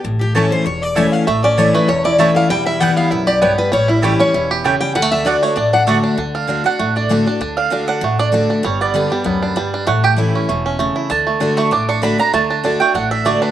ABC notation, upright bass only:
X:1
M:4/4
L:1/8
Q:"Swing" 1/4=195
K:D
V:1 name="Upright bass" clef=bass
A,,,4 E,,,4 | A,,,4 E,,,4 | E,,,4 B,,,4 | A,,,4 E,,,4 |
D,,4 A,,,4 | D,,4 A,,,4 | D,,4 A,,,4 | G,,,4 D,,4 |
A,,,4 E,,,4 | D,,4 A,,,4 | D,,4 A,,,4 |]